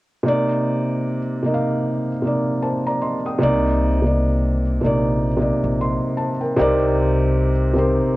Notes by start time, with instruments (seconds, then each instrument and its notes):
0.24 felt piano C3 A#3 D#4
0.29 felt piano D5
1.42 felt piano C3 A#3 D#4
1.47 felt piano D#5
1.54 felt piano F5
2.22 felt piano C3 A#3 D#4
2.27 felt piano D5
2.62 felt piano C5 A5
2.86 felt piano D5 A#5
3.01 felt piano D#5 C6
3.26 felt piano G5 D#6
3.38 felt piano C3 A#3 D#4
3.43 upright bass C2, felt piano D5
4.02 felt piano C3 A#3 D#4
4.07 felt piano D5
4.81 upright bass A#1, felt piano C3 A#3 D#4
4.86 felt piano D5
5.37 felt piano C3 A#3 D#4
5.42 felt piano D5
5.63 upright bass A#1
5.81 felt piano D#5 C6
6.17 felt piano C5 A5
6.41 felt piano A#4 G5
6.57 upright bass C2, felt piano C3 C4 D#4 G4 A#4
6.61 felt piano D5
7.73 felt piano C3 C4 D#4 G4
7.78 felt piano A#4 C5
8.00 upright bass A#1